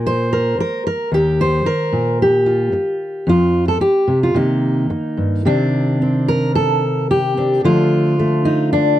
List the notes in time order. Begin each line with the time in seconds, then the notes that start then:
Already playing: A#2 A#4
0.06 C5
0.33 A#4
0.59 A#4, muted steel-string acoustic guitar stroke
0.87 A#4
1.12 D#2 G4
1.41 C5
1.65 A#4, muted steel-string acoustic guitar stroke
1.92 A#2
2.22 G4
2.46 F4
2.72 muted steel-string acoustic guitar stroke
3.27 F2 F4
3.68 A4
3.81 G4, muted steel-string acoustic guitar stroke
4.08 C3
4.23 F4
4.34 C3 D#3 A#3 D#4
4.90 muted steel-string acoustic guitar stroke
5.17 G2
5.45 C3 D#3 C4 D4
6.02 C4
6.28 A#4
6.55 A4
7.11 G4
7.37 C4 D4
7.64 D3 F3 A3 F4
8.19 A3
8.45 D#4
8.73 D4